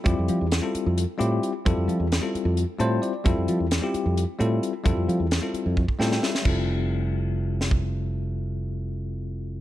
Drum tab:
CC |--------------|--------------|--------------|--------------|
HH |x-x-x-x-x-x-x-|x-x-x-x-x-x-x-|x-x-x-x-x-x-x-|x-x-x-x-------|
SD |----o---------|----o---------|----o---------|----o-----oooo|
BD |o-------------|o-------------|o-------------|o-------oo----|

CC |x-------------|--------------|
HH |--------------|--------------|
SD |----------o---|--------------|
BD |o----------o--|--------------|